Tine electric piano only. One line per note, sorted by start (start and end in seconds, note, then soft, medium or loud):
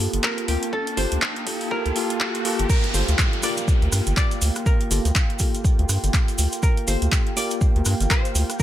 0.00 0.46 A#3 medium
0.00 0.46 F4 medium
0.00 0.46 G4 medium
0.00 0.46 A4 loud
0.48 0.71 A#3 medium
0.48 0.71 F4 medium
0.48 0.71 G4 medium
0.48 0.71 A#4 loud
0.97 1.20 A#3 loud
0.97 1.20 F4 medium
0.97 1.20 G4 medium
0.97 1.21 A4 loud
1.46 1.69 A#3 loud
1.46 1.70 F4 medium
1.46 1.70 G4 medium
1.46 1.70 A4 loud
1.71 1.94 A#3 loud
1.71 1.94 F4 medium
1.71 1.94 G4 medium
1.71 1.94 A4 loud
1.96 2.19 A#3 loud
1.96 2.19 F4 loud
1.96 2.19 G4 loud
1.96 2.19 A4 loud
2.20 2.43 A#3 loud
2.20 2.43 F4 loud
2.20 2.43 G4 loud
2.20 2.43 A4 loud
2.45 2.68 A#3 loud
2.45 2.68 F4 loud
2.45 2.68 G4 loud
2.45 2.68 A4 loud
2.94 3.41 A#3 loud
2.94 3.41 F4 medium
2.94 3.41 G4 medium
2.94 3.41 A4 loud
3.43 4.88 A#3 loud
3.43 4.88 F4 medium
3.43 4.89 G4 medium
3.43 4.89 A#4 loud
4.91 5.05 A#3 loud
4.91 5.05 F4 medium
4.91 5.05 G4 medium
4.91 5.05 A4 loud
5.40 6.85 A#3 medium
5.40 6.85 F4 medium
5.40 6.85 G4 medium
5.40 6.85 A4 medium
6.87 7.34 A#3 loud
6.87 7.34 F4 medium
6.87 7.34 G4 medium
6.87 7.34 A4 loud
7.36 8.63 A#3 loud
7.36 8.63 F4 medium
7.36 8.63 G4 medium
7.36 8.63 A#4 loud